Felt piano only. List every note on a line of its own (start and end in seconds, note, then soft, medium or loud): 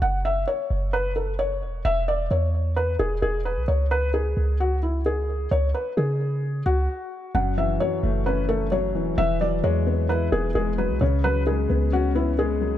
0.02 0.19 F#5 medium
0.25 0.42 E5 medium
0.48 0.91 C#5 medium
0.93 1.10 B4 medium
1.16 1.33 A4 medium
1.39 1.82 C#5 medium
1.85 2.02 E5 medium
2.08 2.25 D5 medium
2.31 2.74 C#5 medium
2.76 2.94 B4 medium
2.99 3.17 G#4 medium
3.22 3.40 G#4 medium
3.45 3.63 B4 medium
3.68 3.85 C#5 medium
3.91 4.08 B4 medium
4.14 4.57 G#4 medium
4.60 4.77 F#4 medium
4.83 5.00 E4 medium
5.06 5.49 G#4 medium
5.51 5.69 C#5 medium
5.74 5.92 B4 medium
5.97 6.62 G#4 medium
6.66 7.31 F#4 medium
7.35 7.52 F#5 medium
7.58 7.75 E5 medium
7.80 8.23 C#5 medium
8.26 8.43 B4 medium
8.49 8.66 A4 medium
8.72 9.15 C#5 medium
9.18 9.35 E5 loud
9.41 9.58 D5 medium
9.64 10.07 C#5 medium
10.09 10.27 B4 medium
10.32 10.49 G#4 medium
10.55 10.72 G#4 medium
10.78 10.95 B4 medium
11.01 11.18 C#5 medium
11.24 11.41 B4 medium
11.47 11.90 G#4 medium
11.93 12.10 F#4 medium
12.16 12.33 E4 medium
12.39 12.78 G#4 medium